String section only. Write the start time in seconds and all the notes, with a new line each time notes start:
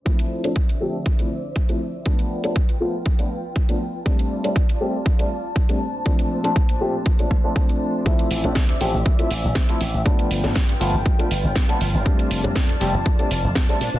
0.06 D3 C5 D5 E5
2.06 F4 B4 G5
4.06 F4 D5 A5
5.81 A#2 D4 C5
8.05 D5 E5
10.06 F4 B4 G5
12.05 D5 A5
13.81 D4 C5